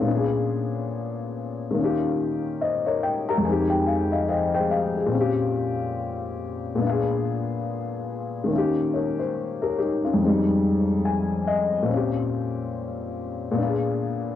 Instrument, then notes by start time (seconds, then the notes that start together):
upright piano
Already playing: C#4 F4
0.01 A#2 B3
0.08 D4 F4
0.15 G#4
1.70 D#3 A#3
1.77 C#4 F4
1.84 G4
2.61 C5 D#5
2.86 A#4 C#5
3.03 G5
3.28 G4 A#4 A#5
3.38 F2 G#3
3.45 C4 D#4 G#5
3.52 G4
3.70 G5
3.87 F5
4.12 D#5 F5
4.29 C5 D#5 F5
4.54 G#4 C5 G5
4.71 F5
4.96 F4 G#4
5.06 A#2 C4
5.13 C#4 F4
5.21 G4
6.75 A#2 B3
6.82 D4 F4
6.89 G#4
8.44 D#3 A#3
8.51 C#4 F4
8.58 G4
8.94 A#4 C#5
9.19 C5
9.62 G4 A#4
9.79 D#4 G4
10.04 C#4 F4
10.14 F2 G3
10.21 G#3 C4 D#4
10.28 G3
11.05 G#5
11.47 D#5
11.82 A#2 C4
11.90 C#4 F4
11.97 G4
13.51 A#2 B3
13.58 D4 F4
13.66 G#4